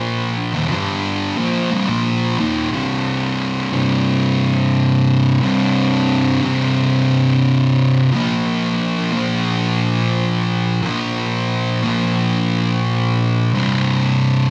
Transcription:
Already playing: A#2 F3 A#3
0.54 D#2 A#2
0.69 G2 D3 G3
1.37 A#2 F3 A#3
1.71 C2 G2
1.88 A#2 F3 A#3
2.39 D#2 A#2 D#3
2.71 C2 G2 C3
3.72 C2 G2 C3
5.41 C2 G2
5.45 C3
6.42 C2 G2 C3
8.12 A#2 F3 A#3
9.13 A#2 F3 A#3
10.82 A#2 F3
10.87 A#3
11.83 F3 A#3
11.88 A#2
13.53 C2 G2 C3

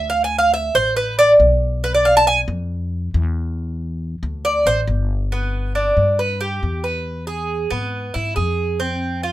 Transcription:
Already playing: D2
0.10 F5
0.24 G#5
0.39 F5
0.54 E5
0.75 A1 C5
0.96 B4
1.19 D5
1.40 B1
1.84 B4
1.94 D5
2.05 F5
2.17 A5
2.27 G#5
2.48 F2
3.14 E2
4.23 D2
4.45 D5
4.66 A1 C5
4.87 G1
5.32 B3
5.75 D4
5.97 G2
6.19 B4
6.41 G4
6.63 E2
6.84 B4
7.27 G#4
7.71 G#2 B3
8.14 G#2 E4
8.36 F2 G#4
8.80 C4
9.23 F4

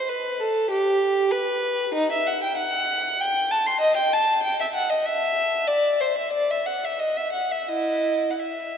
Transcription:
0.09 B4
0.40 A4
0.71 G4
1.31 B4
1.95 D#4
2.12 E5
2.27 F#5
2.44 G5
2.58 F#5
3.20 G5
3.51 A5
3.66 C6
3.81 D#5
3.97 G5
4.13 A5
4.43 G5
4.60 E5
4.74 F#5
4.90 D#5
5.05 E5
5.67 D5
6.00 C5
6.18 E5
6.33 D5
6.51 E5
6.66 F#5
6.85 E5
7.00 D#5
7.17 E5
7.33 F#5
7.52 E5
7.68 E4 D#5
8.30 F#5
8.40 E5

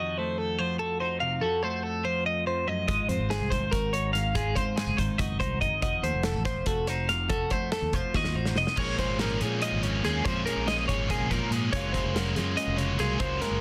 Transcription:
Already playing: D#3 D#5
0.00 F2 F#4
0.18 A3 C5
0.38 A4
0.59 F3 C5
0.79 F#4 A4
1.00 D#4 C5
1.20 C3 F5
1.41 F2 F#4 A4
1.63 A3 C5
1.83 A4
2.04 F3 C5
2.26 D#5
2.46 F2 C5
2.67 F#2 D#5
2.88 G#1 G#2 F4 D#5, kick, closed hi-hat
3.09 F2 C4 C5, closed hi-hat
3.19 G#1
3.30 G#4, snare, closed hi-hat
3.40 C2
3.50 D#3 C5, kick, closed hi-hat
3.61 G#1
3.71 G#1 F#4 A#4, kick, closed hi-hat
3.93 D#4 C#5, closed hi-hat
4.13 G#2 F5, snare, closed hi-hat
4.35 G#2 F4 G#4, kick, closed hi-hat
4.55 C4 C5, kick, closed hi-hat
4.76 G#4, snare, closed hi-hat
4.87 F#1
4.97 G#1 D#3 C5, kick, closed hi-hat
5.18 F#1 F#4 D#5, kick, snare, closed hi-hat
5.40 C2 D#4 C5, kick, closed hi-hat
5.61 F#1 G#2 D#5, kick, closed hi-hat
5.82 F1 F2 F#4 D#5, kick, closed hi-hat
6.03 D#2 A3 C5, closed hi-hat
6.14 F1
6.23 A4, snare, closed hi-hat
6.34 A1
6.45 F3 C5, kick, snare, closed hi-hat
6.56 F1
6.66 F1 F#4 A4, kick, closed hi-hat
6.87 D#4 C5, snare, closed hi-hat
7.09 C3 F5, snare, closed hi-hat
7.29 F2 F#4 A4, kick, closed hi-hat
7.50 A3 C5, kick, closed hi-hat
7.72 A4, snare, closed hi-hat
7.82 D#2
7.93 F1 F3 C5, kick, closed hi-hat
8.14 D#2 F#4 D#5, kick, snare
8.24 snare
8.35 A1 D#4 C5
8.45 snare
8.56 F1 C3 D#5, snare
8.67 snare
8.76 A#1 A#2 F3 G#3 A#3 C#4 G#4 C#5, kick, crash
8.97 F3 G#3 A#3 C#4 C5, kick, snare, closed hi-hat
9.09 G#1
9.18 A#2 F3 A#3 C#4 A#4, snare, closed hi-hat
9.39 A#2 F3 A#3 C#4 G#4, closed hi-hat
9.61 A#2 F3 G#3 A#3 C#4 D#5, closed hi-hat
9.72 G#1
9.82 F2 F3 A#3 C#4 C#5, closed hi-hat
10.04 D#2 A#2 F3 A#3 C#4 G#4, snare, closed hi-hat
10.24 F2 A#2 F3 G#3 A#3 C#4 G#4 C5, kick, closed hi-hat
10.45 F3 G#3 A#3 C#4 A#4, closed hi-hat
10.56 A#1
10.66 A#2 F3 A#3 C#4 D#5, snare, closed hi-hat
10.87 G#1 F3 A#3 C#4 G#4 C#5, kick, closed hi-hat
11.08 A#2 C3 F3 A#3 C#4 G#4, kick, closed hi-hat
11.20 A#1
11.29 A#2 F3 A#3 C#4 A#4, kick, closed hi-hat
11.50 G#2 A#2 F3 A#3 C#4 G#4, closed hi-hat
11.71 F#1 F#2 C#3 F#3 G#3 A#3 C#4 C#5, kick, closed hi-hat
11.76 F4
11.93 F#3 G#3 A#3 C#4 C5, kick, closed hi-hat
12.04 F1
12.15 C#3 F#3 A#3 C#4 A#4, snare, closed hi-hat
12.34 F#2 F#3 A#3 C#4 G#4, snare, closed hi-hat
12.39 F4
12.55 F#2 C#3 F#3 G#3 A#3 C#4 D#5, closed hi-hat
12.67 F1
12.76 C#3 F#3 A#3 C#4 C#5, closed hi-hat
12.98 C2 C#3 F#3 A#3 C#4 F4 G#4, snare, closed hi-hat
13.18 C#2 F#2 C#3 F#3 G#3 A#3 C#4 F4 C5, kick, closed hi-hat
13.39 F#3 G#3 A#3 C#4 A#4, snare, closed hi-hat
13.51 F#1

